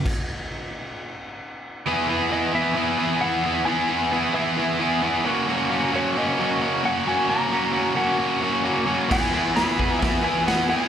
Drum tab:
CC |x-------|--------|--------|--------|
HH |--------|--------|--------|--------|
SD |--------|--------|--------|--------|
BD |o-------|--------|--------|--------|

CC |--------|x-------|
HH |--------|--o-o-o-|
SD |--------|o-o-o-o-|
BD |--------|o--oo---|